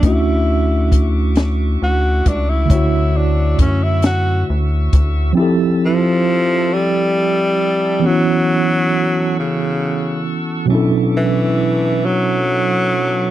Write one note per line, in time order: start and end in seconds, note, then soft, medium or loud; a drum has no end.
0.00 1.77 D2 loud
0.00 2.65 A3 medium
0.00 2.66 C#4 medium
0.00 2.64 D4 medium
0.00 5.32 F#4 medium
0.00 5.33 E5 medium
0.00 5.32 C#6 medium
0.00 2.66 D6 medium
0.00 kick loud
0.00 closed hi-hat medium
0.06 1.34 E4 medium
0.06 2.67 E4 medium
0.06 2.69 F#4 medium
0.92 kick medium
0.92 closed hi-hat medium
1.35 snare loud
1.35 closed hi-hat medium
1.82 2.22 D2 loud
1.82 2.30 F#4 loud
2.26 2.67 C#2 loud
2.26 2.51 D4 medium
2.26 kick medium
2.26 closed hi-hat medium
2.50 3.18 E4 medium
2.65 5.30 D3 medium
2.65 5.31 A3 medium
2.70 3.55 D2 loud
2.70 5.34 E4 medium
2.70 5.33 C#5 medium
2.70 5.34 E6 medium
2.70 kick loud
2.70 closed hi-hat medium
2.75 5.35 F#4 medium
3.16 3.60 D4 medium
3.59 4.44 F#2 medium
3.59 3.85 C#4 medium
3.59 kick medium
3.59 closed hi-hat medium
3.83 4.04 E4 medium
4.02 4.46 F#4 loud
4.02 snare loud
4.02 closed hi-hat medium
4.50 4.89 D2 medium
4.93 5.33 D2 medium
4.93 kick loud
4.93 closed hi-hat medium
5.33 7.97 F3 medium
5.33 7.98 C4 medium
5.37 7.99 E4 medium
5.37 8.01 G4 medium
5.37 10.66 A4 medium
5.37 8.01 E5 medium
5.37 8.01 A5 medium
5.37 10.66 E6 medium
5.42 8.02 A4 medium
5.85 6.75 F3 loud
6.74 8.07 G3 loud
8.00 10.64 E3 medium
8.00 10.65 B3 medium
8.00 10.67 F#5 medium
8.00 10.67 C#6 medium
8.04 9.38 F#3 loud
8.04 10.66 C#4 medium
8.04 10.68 F#4 medium
8.09 10.69 E4 medium
9.39 10.34 C#3 loud
10.66 13.30 B2 medium
10.66 13.31 F#3 medium
10.66 13.31 C#4 medium
10.70 13.31 B3 medium
10.70 13.31 D4 medium
10.70 13.31 E4 medium
10.70 13.31 A4 medium
10.70 13.31 E5 medium
10.70 13.31 C#6 medium
10.70 13.31 D6 medium
10.75 13.31 A4 medium
11.17 12.07 E3 loud
12.06 13.31 F#3 loud